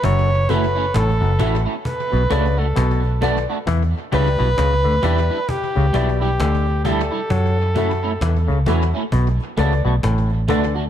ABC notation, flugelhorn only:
X:1
M:4/4
L:1/16
Q:"Swing 16ths" 1/4=66
K:Edor
V:1 name="Flugelhorn"
c2 B2 A3 z B3 A3 z2 | z2 B6 G3 G3 A2- | A6 z8 z2 |]